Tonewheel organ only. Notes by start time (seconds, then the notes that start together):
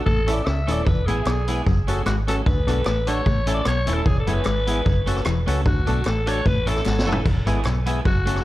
0.27 C#4 E4 A4
0.67 C#4 E4 A4
1.08 B3 E4 G#4
1.27 E4 G#4
1.48 B3 E4 G#4
1.88 C#4 F#4 A4
2.28 C#4 F#4 A4
2.67 D4 F#4 A4
2.86 F#4 A4
3.07 D4 F#4 A4
3.47 C#4 E4 A4
3.87 C#4 E4 A4
4.27 B3 E4 G#4
4.47 E4 G#4
4.67 B3 E4 G#4
5.07 C#4 F#4 A4
5.47 C#4 F#4 A4
5.87 D4 F#4 A4
6.06 F#4 A4
6.27 D4 F#4 A4
6.67 C#4 E4 A4
7.07 C#4 E4 A4
7.46 B3 E4 G#4
7.66 E4 G#4
7.86 B3 E4 G#4
8.27 C#4 F#4 A4